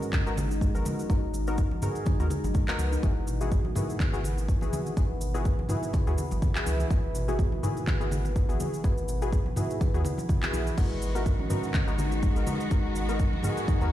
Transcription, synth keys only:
0.00 0.23 B3 medium
0.00 0.23 D#4 medium
0.00 0.23 F#4 medium
0.00 0.23 A#4 medium
0.27 0.33 B3 medium
0.27 0.33 D#4 medium
0.27 0.33 F#4 medium
0.27 0.33 A#4 loud
0.75 1.07 B3 medium
0.75 1.07 D#4 medium
0.75 1.07 F#4 medium
0.75 1.07 A#4 medium
1.10 1.18 B3 medium
1.10 1.18 D#4 medium
1.10 1.18 F#4 medium
1.10 1.18 A#4 medium
1.48 1.57 B3 medium
1.48 1.57 D#4 medium
1.48 1.57 F#4 medium
1.48 1.58 A#4 loud
1.83 2.17 B3 medium
1.83 2.17 D#4 medium
1.83 2.17 F#4 medium
1.83 2.17 A#4 medium
2.20 2.26 B3 medium
2.20 2.26 D#4 medium
2.20 2.26 F#4 medium
2.20 2.26 A#4 loud
2.69 3.01 B3 medium
2.69 3.01 D#4 medium
2.69 3.01 F#4 medium
2.69 3.01 A#4 loud
3.03 3.11 B3 medium
3.03 3.11 E4 medium
3.03 3.11 F#4 medium
3.03 3.11 G#4 medium
3.41 3.51 B3 medium
3.41 3.51 E4 medium
3.41 3.51 F#4 medium
3.41 3.51 G#4 medium
3.76 4.10 B3 medium
3.76 4.10 E4 medium
3.76 4.10 F#4 medium
3.76 4.10 G#4 medium
4.13 4.20 B3 medium
4.13 4.20 E4 medium
4.13 4.20 F#4 medium
4.13 4.20 G#4 loud
4.62 4.94 B3 medium
4.62 4.94 E4 medium
4.62 4.94 F#4 medium
4.62 4.94 G#4 medium
4.97 5.05 B3 medium
4.97 5.05 E4 medium
4.97 5.05 F#4 medium
4.97 5.05 G#4 medium
5.34 5.44 B3 medium
5.34 5.44 E4 medium
5.34 5.44 F#4 medium
5.34 5.44 G#4 loud
5.69 6.04 B3 medium
5.69 6.04 E4 medium
5.69 6.04 F#4 medium
5.69 6.04 G#4 medium
6.07 6.13 B3 medium
6.07 6.13 E4 medium
6.07 6.13 F#4 medium
6.07 6.13 G#4 loud
6.56 6.88 B3 medium
6.56 6.88 E4 medium
6.56 6.88 F#4 medium
6.56 6.88 G#4 medium
6.90 6.98 B3 medium
6.90 6.98 E4 medium
6.90 6.98 F#4 medium
6.90 6.98 G#4 medium
7.28 7.38 B3 medium
7.28 7.38 E4 medium
7.28 7.38 F#4 medium
7.28 7.38 G#4 medium
7.63 7.98 B3 medium
7.63 7.98 E4 medium
7.63 7.98 F#4 medium
7.63 7.98 G#4 medium
8.00 8.07 B3 medium
8.00 8.07 E4 medium
8.00 8.07 F#4 medium
8.00 8.07 G#4 loud
8.49 8.81 B3 medium
8.49 8.81 E4 medium
8.49 8.81 F#4 medium
8.49 8.81 G#4 medium
8.84 8.92 B3 medium
8.84 8.92 E4 medium
8.84 8.92 F#4 medium
8.84 8.92 G#4 medium
9.22 9.32 B3 medium
9.22 9.32 E4 medium
9.22 9.32 F#4 medium
9.22 9.32 G#4 loud
9.57 9.91 B3 medium
9.57 9.91 E4 medium
9.57 9.91 F#4 medium
9.57 9.91 G#4 medium
9.94 10.01 B3 medium
9.94 10.00 E4 medium
9.94 10.01 F#4 medium
9.94 10.00 G#4 loud
10.42 10.75 B3 medium
10.42 10.75 E4 medium
10.42 10.75 F#4 medium
10.42 10.75 G#4 loud
10.78 10.85 B3 medium
10.78 10.85 D#4 medium
10.78 10.85 F#4 medium
10.78 10.85 A#4 medium
11.15 11.25 B3 medium
11.15 11.25 D#4 medium
11.15 11.25 F#4 medium
11.15 11.25 A#4 loud
11.50 11.85 B3 medium
11.50 11.85 D#4 medium
11.50 11.84 F#4 medium
11.50 11.85 A#4 medium
11.87 11.94 B3 medium
11.87 11.94 D#4 medium
11.87 11.94 F#4 medium
11.87 11.94 A#4 loud
12.36 12.69 B3 medium
12.36 12.69 D#4 medium
12.36 12.69 F#4 medium
12.36 12.69 A#4 medium
12.71 12.79 B3 medium
12.71 12.79 D#4 medium
12.71 12.79 F#4 medium
12.71 12.79 A#4 medium
13.09 13.19 B3 medium
13.09 13.19 D#4 medium
13.09 13.19 F#4 medium
13.09 13.19 A#4 loud
13.44 13.78 B3 medium
13.44 13.78 D#4 medium
13.44 13.78 F#4 medium
13.44 13.78 A#4 medium
13.82 13.88 B3 medium
13.82 13.88 D#4 medium
13.82 13.88 F#4 medium
13.82 13.88 A#4 loud

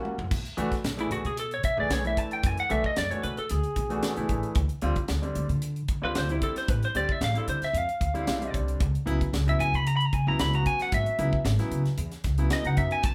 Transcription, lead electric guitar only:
1.01 1.12 E4 medium
1.12 1.25 F#4 medium
1.26 1.38 G#4 medium
1.40 1.52 A4 medium
1.54 1.64 C#5 medium
1.65 1.78 E5 medium
1.80 1.91 D5 medium
1.93 2.05 C#5 medium
2.07 2.18 E5 medium
2.18 2.31 A5 medium
2.33 2.46 G5 medium
2.46 2.59 G#5 medium
2.60 2.71 F#5 medium
2.71 2.84 E5 medium
2.86 2.97 D#5 medium
2.98 3.12 D5 medium
3.12 3.23 C#5 medium
3.24 3.37 B4 medium
3.38 3.51 A4 medium
3.51 4.57 G#4 medium
6.05 6.16 B4 medium
6.18 6.31 C5 medium
6.32 6.43 E4 medium
6.43 6.56 A4 medium
6.58 6.71 C5 medium
6.71 6.83 B4 medium
6.85 6.96 C5 medium
6.97 7.12 D5 medium
7.12 7.23 E5 medium
7.24 7.37 F5 medium
7.38 7.49 A4 medium
7.49 7.62 C5 medium
7.64 7.78 E5 medium
7.78 8.56 F5 medium
9.49 9.61 E5 medium
9.60 9.75 G#5 medium
9.75 9.87 B5 medium
9.87 9.96 A#5 medium
9.97 10.05 B5 medium
10.05 10.14 A#5 medium
10.14 10.27 G#5 medium
10.28 10.40 A#5 medium
10.40 10.54 B5 loud
10.55 10.66 A#5 medium
10.67 10.80 G#5 medium
10.82 10.93 F#5 medium
10.94 11.43 E5 medium
12.53 12.66 D#5 medium
12.67 12.77 F#5 medium
12.78 12.91 E5 medium
12.92 13.04 G#5 medium
13.05 13.14 A5 loud

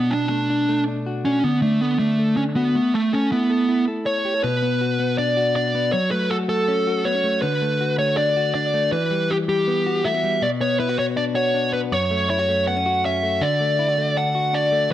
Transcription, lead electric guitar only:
0.00 0.13 B3 medium
0.11 0.28 D4 medium
0.29 0.83 D4 medium
1.25 1.44 C#4 loud
1.44 1.62 B3 loud
1.62 1.81 A3 medium
1.81 1.99 B3 loud
1.99 2.36 A3 medium
2.37 2.42 C#4 loud
2.56 2.94 B3 loud
2.94 3.13 A3 medium
3.13 3.31 C#4 medium
3.32 3.84 B3 medium
4.06 4.43 C#5 medium
4.43 5.18 B4 loud
5.18 5.55 D5 medium
5.56 5.91 D5 medium
5.92 6.11 C#5 medium
6.11 6.31 B4 medium
6.30 6.35 A4 loud
6.49 7.07 A4 medium
7.05 7.41 C#5 loud
7.42 7.95 B4 loud
7.99 8.16 C#5 medium
8.17 8.52 D5 medium
8.54 8.89 D5 loud
8.92 9.31 B4 loud
9.30 9.35 G4 medium
9.49 10.07 G4 medium
10.05 10.44 E5 loud
10.43 10.48 D5 loud
10.61 10.79 C#5 loud
10.80 10.99 B4 medium
10.99 11.04 C#5 medium
11.17 11.22 D5 loud
11.35 11.73 C#5 loud
11.73 11.78 B4 loud
11.92 12.29 C#5 loud
12.30 12.64 C#5 medium
12.67 13.05 F#5 loud
13.05 13.43 E5 loud
13.43 14.19 D5 loud
14.17 14.55 F#5 loud
14.54 14.89 D5 loud

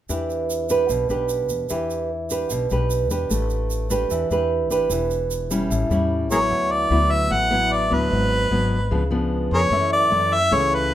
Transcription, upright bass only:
0.09 0.86 E2 medium
0.89 1.08 B1 medium
1.09 1.50 B1 medium
1.50 1.69 E2 medium
1.71 2.46 E2 medium
2.51 2.69 B1 medium
2.71 3.11 B1 medium
3.11 3.29 E2 medium
3.31 4.06 A1 medium
4.11 4.29 E2 medium
4.30 4.70 E2 medium
4.70 4.89 A1 medium
4.90 5.66 E1 medium
5.70 5.89 A1 medium
5.90 6.31 E2 medium
6.31 6.49 A1 medium
6.51 6.88 D2 medium
6.90 7.28 D2 medium
7.31 7.87 A1 medium
7.91 8.10 D2 medium
8.11 8.48 G#1 medium
8.51 8.88 G#1 medium
8.91 9.47 C#2 medium
9.51 9.70 F2 medium
9.71 10.08 F#2 medium
10.10 10.48 F#2 medium
10.51 10.94 C#2 medium

